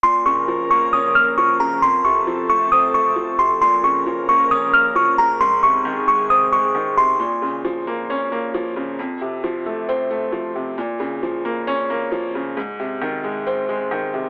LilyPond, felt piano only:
\new Staff \with { instrumentName = "Felt piano" } { \clef bass \time 4/4 \key bes \minor \tempo 4 = 134 bes,8 des8 f8 bes8 des'8 bes8 f8 des8 | f,8 c8 f8 a8 c'8 a8 f8 c8 | bes,8 des8 f8 bes8 des'8 bes8 f8 des8 | aes,8 c8 ees8 aes8 c'8 aes8 ees8 c8 |
bes,8 des8 f8 bes8 des'8 bes8 f8 des8 | f,8 c8 f8 a8 c'8 a8 f8 c8 | bes,8 des8 f8 bes8 des'8 bes8 f8 des8 | aes,8 c8 ees8 aes8 c'8 aes8 ees8 c8 | }